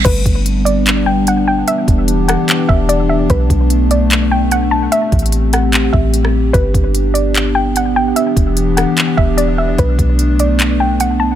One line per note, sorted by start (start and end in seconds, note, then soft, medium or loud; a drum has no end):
0.05 0.25 G1 loud
0.05 1.66 G3 medium
0.05 4.88 B3 medium
0.05 4.88 D4 medium
0.05 0.62 B4 loud
0.05 kick loud
0.05 closed hi-hat medium
0.05 crash loud
0.26 1.64 G1 loud
0.26 kick medium
0.26 closed hi-hat medium
0.46 closed hi-hat medium
0.65 1.04 D5 medium
0.65 closed hi-hat medium
0.86 clap loud
0.86 closed hi-hat medium
1.06 1.26 G5 medium
1.27 1.47 F#5 medium
1.27 closed hi-hat medium
1.48 1.67 G5 medium
1.68 3.28 E3 medium
1.68 3.28 G4 medium
1.68 2.25 E5 loud
1.68 closed hi-hat medium
1.88 2.36 E1 loud
1.88 kick medium
1.88 closed hi-hat medium
2.08 closed hi-hat medium
2.28 2.66 F#5 medium
2.28 cross-stick loud
2.28 closed hi-hat medium
2.49 clap loud
2.49 closed hi-hat medium
2.69 3.27 E1 loud
2.69 2.88 E5 medium
2.69 kick medium
2.89 3.08 D5 medium
2.89 closed hi-hat medium
3.09 3.29 E5 medium
3.30 3.49 B1 loud
3.30 6.51 A3 medium
3.30 3.87 B4 medium
3.30 kick loud
3.30 closed hi-hat medium
3.50 4.88 B1 loud
3.50 kick medium
3.50 closed hi-hat medium
3.70 closed hi-hat medium
3.91 4.29 D5 medium
3.91 closed hi-hat medium
4.11 clap loud
4.11 closed hi-hat medium
4.31 4.51 G5 medium
4.51 4.71 F#5 medium
4.51 closed hi-hat medium
4.71 4.91 A5 medium
4.92 6.53 C4 medium
4.92 8.13 G4 medium
4.92 5.49 E5 loud
4.92 closed hi-hat medium
5.12 5.90 A1 loud
5.12 kick medium
5.12 closed hi-hat soft
5.19 closed hi-hat medium
5.26 closed hi-hat medium
5.32 closed hi-hat medium
5.53 5.91 F#5 medium
5.53 cross-stick medium
5.53 closed hi-hat medium
5.73 clap loud
5.73 closed hi-hat medium
5.93 6.52 A1 loud
5.93 6.12 E5 medium
5.93 kick medium
6.14 closed hi-hat medium
6.25 cross-stick medium
6.53 6.74 G1 loud
6.53 11.35 B3 medium
6.53 8.15 D4 medium
6.53 7.11 B4 loud
6.53 kick loud
6.53 closed hi-hat medium
6.74 8.12 G1 loud
6.74 kick medium
6.74 closed hi-hat medium
6.95 closed hi-hat medium
7.14 7.52 D5 medium
7.14 closed hi-hat medium
7.35 clap loud
7.35 closed hi-hat medium
7.55 7.74 G5 medium
7.76 7.95 F#5 medium
7.76 closed hi-hat medium
7.96 8.15 G5 medium
8.16 9.77 E3 medium
8.16 11.35 D4 medium
8.16 9.77 G4 medium
8.16 8.73 E5 loud
8.16 closed hi-hat medium
8.37 8.85 E1 loud
8.37 kick medium
8.37 closed hi-hat medium
8.57 closed hi-hat medium
8.77 9.15 F#5 medium
8.77 cross-stick loud
8.77 closed hi-hat medium
8.97 clap loud
8.97 closed hi-hat medium
9.17 9.76 E1 loud
9.17 9.37 E5 medium
9.17 kick medium
9.37 9.57 D5 medium
9.37 closed hi-hat medium
9.58 9.77 E5 medium
9.78 9.98 B1 loud
9.78 11.35 A3 medium
9.78 10.36 B4 loud
9.78 kick loud
9.78 closed hi-hat medium
9.99 11.35 B1 loud
9.99 kick medium
9.99 closed hi-hat medium
10.19 closed hi-hat medium
10.39 10.78 D5 medium
10.39 closed hi-hat medium
10.59 clap loud
10.59 closed hi-hat medium
10.80 10.99 G5 medium
11.00 11.19 F#5 medium
11.00 closed hi-hat medium
11.20 11.35 A5 medium